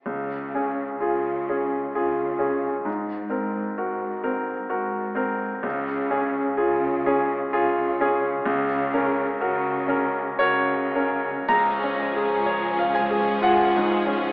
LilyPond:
<<
  \new Staff \with { instrumentName = "Violin section" } { \time 3/4 \key des \major \tempo 4 = 64 r2. | r2. | r2. | r2. |
aes'2. | }
  \new Staff \with { instrumentName = "Grand piano" } { \time 3/4 \key des \major << { r2. | r2. | r2. | r2 des''4 |
bes''4. aes''8 ges''4 | } \\ { des,8 <des' aes'>8 <f' aes'>8 <des' aes'>8 <f' aes'>8 <des' aes'>8 | aes,8 <c' bes'>8 <ges' bes'>8 <c' bes'>8 <ges' bes'>8 <c' bes'>8 | des,8 <des' aes'>8 <f' aes'>8 <des' aes'>8 <f' aes'>8 <des' aes'>8 | des,8 <des' bes'>8 <ges' bes'>8 <des' bes'>8 <ges' bes'>8 <des' bes'>8 |
\tuplet 3/2 { des,8 des'8 aes'8 des''8 f''8 aes'8 f'8 aes,8 des'8 } | } >> }
  \new Staff \with { instrumentName = "Violin section" } { \time 3/4 \key des \major r2. | r2. | r2. | r2. |
aes16 des'16 aes16 des'16 aes16 des'16 aes16 des'16 aes16 des'16 aes16 des'16 | }
  \new Staff \with { instrumentName = "Viola section" } { \clef bass \time 3/4 \key des \major r2. | r2. | r2. | r2. |
f2. | }
  \new Staff \with { instrumentName = "Cello section" } { \clef bass \time 3/4 \key des \major des4 des4 des4 | aes,4 aes,4 aes,4 | des4 des4 des4 | des4 des4 des4 |
des,2. | }
  \new Staff \with { instrumentName = "Double bass section" } { \clef bass \time 3/4 \key des \major r2. | r2. | r2. | r2. |
des,2. | }
>>